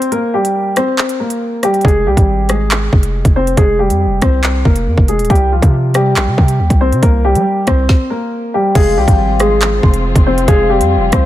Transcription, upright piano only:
0.00 0.10 C4 medium
0.12 0.32 A#3 medium
0.12 0.31 A#4 loud
0.34 0.75 G3 medium
0.34 0.74 G4 medium
0.77 1.18 C4 medium
0.77 1.17 C5 medium
1.20 1.61 A#3 medium
1.20 1.60 A#4 medium
1.64 1.83 G3 medium
1.64 1.83 G4 medium
1.85 2.05 G#3 medium
1.85 2.04 G#4 loud
2.07 2.48 G3 medium
2.07 2.47 G4 medium
2.49 3.32 G#3 medium
2.49 3.32 G#4 medium
3.36 3.56 C4 medium
3.36 3.55 C5 medium
3.58 3.78 G#3 medium
3.58 3.77 G#4 loud
3.79 4.20 G3 medium
3.79 4.20 G4 medium
4.23 4.63 C4 medium
4.23 4.63 C5 medium
4.66 5.07 A#3 medium
4.66 5.06 A#4 medium
5.09 5.29 G#3 medium
5.09 5.28 G#4 medium
5.30 5.50 G3 medium
5.30 5.50 G4 loud
5.52 5.93 F3 medium
5.52 5.92 F4 medium
5.95 6.78 G3 medium
5.95 6.77 G4 medium
6.81 7.01 C4 medium
6.81 7.00 C5 medium
7.02 7.23 A#3 medium
7.02 7.22 A#4 loud
7.25 7.65 G3 medium
7.25 7.65 G4 medium
7.67 8.08 C4 medium
7.67 8.08 C5 medium
8.10 8.51 A#3 medium
8.10 8.51 A#4 medium
8.54 8.74 G3 medium
8.54 8.74 G4 medium
8.76 8.95 G#3 medium
8.76 8.95 G#4 loud
8.98 9.38 G3 medium
8.98 9.38 G4 medium
9.40 10.23 G#3 medium
9.40 10.22 G#4 medium
10.27 10.47 C4 medium
10.27 10.46 C5 medium
10.48 10.68 G#3 medium
10.48 10.68 G#4 loud
10.70 11.11 G3 medium
10.70 11.10 G4 medium
11.13 11.26 C4 medium
11.13 11.26 C5 medium

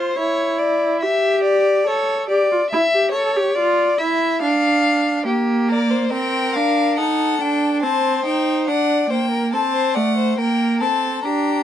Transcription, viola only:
0.00 0.16 F4 medium
0.18 1.04 E4 medium
1.03 1.87 G4 medium
1.88 2.29 A4 medium
2.30 2.51 G4 medium
2.52 2.60 F4 medium
2.73 2.81 E4 medium
2.94 3.14 G4 medium
3.15 3.38 A4 medium
3.36 3.57 G4 medium
3.58 3.99 F4 medium
4.00 4.41 E4 medium
4.42 5.25 D4 medium
5.28 6.11 A#3 medium
6.13 6.57 C4 medium
6.55 6.99 D4 medium
6.98 7.40 D#4 medium
7.41 7.84 D4 medium
7.83 8.25 C4 medium
8.26 8.70 D#4 medium
8.68 9.10 D4 medium
9.10 9.55 A#3 medium
9.53 9.98 C4 medium
9.96 10.38 A3 medium
10.39 10.83 A#3 medium
10.81 11.24 C4 medium
11.25 11.63 D4 medium

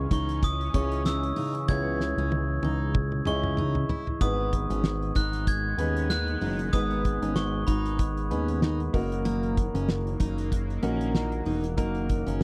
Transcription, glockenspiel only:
0.00 0.12 C#6 loud
0.13 0.41 C#6 medium
0.44 0.76 D#6 loud
0.75 1.04 C#6 medium
1.06 1.65 E6 medium
1.68 3.54 G#6 loud
3.27 4.24 C#6 medium
4.22 5.19 D#6 medium
5.16 5.30 F#6 medium
5.48 6.12 G#6 loud
6.10 6.75 F#6 loud
6.73 7.38 D#6 loud
7.36 7.65 C#6 medium
7.67 8.90 B5 medium

